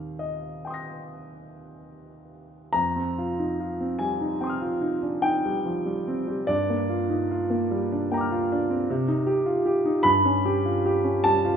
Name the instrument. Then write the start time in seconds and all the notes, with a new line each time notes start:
grand piano
Already playing: D#2 G3 C4 D#4 A#4 F5
0.19 D#5
0.65 G5 C6
0.70 D#6 A#6
2.73 F2 A#5
2.96 C4
3.18 F4
3.39 D#4
3.60 F4
3.81 C4
3.99 G3 G#5
4.21 D#4
4.41 C4 G5 C6
4.47 D#6 F6
4.62 F4
4.81 D#4
5.03 D4
5.22 D#4 G5
5.46 G3
5.66 F3
5.86 G3
6.08 C4
6.28 G3
6.47 G2 D5
6.70 A#3
6.89 F4
7.10 D#4
7.31 F4
7.50 A#3
7.71 G3
7.92 D4
8.11 A#3 G5 A#5
8.17 D6 F6
8.32 F4
8.52 D4
8.70 C4
8.90 C3
9.08 D#4
9.27 G4
9.46 F4
9.66 G4
9.85 D#4
10.03 G2 B5
10.25 C#4
10.45 G4
10.65 F4
10.86 G4
11.04 C#4
11.24 G3 A5
11.45 F4